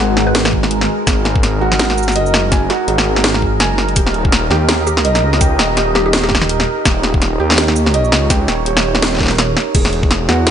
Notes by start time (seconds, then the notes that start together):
Already playing: G#1 G#3 D#4 F#4 A#4 D#5 G#5
0.00 G#4
0.17 snare
0.27 B4
0.35 snare, closed hi-hat
0.45 snare
0.53 kick
0.63 snare
0.71 closed hi-hat
0.81 snare
1.07 G#1 G#4, kick, snare, closed hi-hat, shaker
1.25 snare, closed hi-hat
1.36 kick
1.43 snare, closed hi-hat
1.61 G#1 F#4
1.72 snare
1.79 snare, closed hi-hat
1.90 snare
1.98 shaker
2.03 shaker
2.08 G1, snare, shaker
2.12 D#5, closed hi-hat, shaker
2.26 shaker
2.33 F#1, snare
2.52 G#5, kick, snare, closed hi-hat, shaker
2.70 F#4, snare, closed hi-hat
2.88 G#1 G#4, closed hi-hat
2.98 snare
3.16 snare
3.24 snare, closed hi-hat
3.34 snare
3.42 kick
3.60 F#1 G#5, snare, closed hi-hat
3.78 snare
3.89 closed hi-hat
3.96 D#1 G4 D#5, kick, closed hi-hat, shaker
4.07 snare
4.14 closed hi-hat
4.25 kick
4.32 snare, closed hi-hat
4.51 D#2 G4, snare
4.69 snare, closed hi-hat
4.87 G4, shaker
4.97 snare
5.05 D#5, closed hi-hat
5.15 snare, shaker
5.23 C#2
5.33 snare
5.41 G5, kick, closed hi-hat, shaker
5.59 D#1, snare, closed hi-hat
5.77 G4, snare, closed hi-hat
5.95 G4, snare
6.06 G4
6.13 snare, closed hi-hat
6.23 G4, snare
6.29 G4, kick, snare
6.35 snare
6.42 snare
6.49 closed hi-hat
6.60 snare
6.85 D#1 G4 C#5, kick, snare, closed hi-hat, shaker
7.03 snare, closed hi-hat
7.14 kick
7.22 snare, closed hi-hat
7.40 D#2 G4
7.50 snare
7.52 snare
7.54 snare
7.56 snare
7.58 snare, closed hi-hat
7.68 snare
7.76 shaker
7.86 snare
7.94 D#5, closed hi-hat
8.04 shaker
8.12 C#2, snare
8.30 G5, kick, snare, closed hi-hat, shaker
8.48 D#1, snare, closed hi-hat, shaker
8.66 G4, closed hi-hat
8.77 snare
8.95 snare
9.02 snare, closed hi-hat
9.13 snare
9.15 snare
9.17 snare
9.19 snare
9.20 A#4, kick, snare
9.23 snare
9.26 snare
9.28 snare
9.31 snare, closed hi-hat
9.38 snare, closed hi-hat
9.57 snare
9.75 E1 E4 G#4 B4 F#5, kick, closed hi-hat, crash, shaker
9.85 snare
9.93 closed hi-hat
10.03 kick
10.11 snare, closed hi-hat
10.29 E2 F#4, snare
10.47 snare, closed hi-hat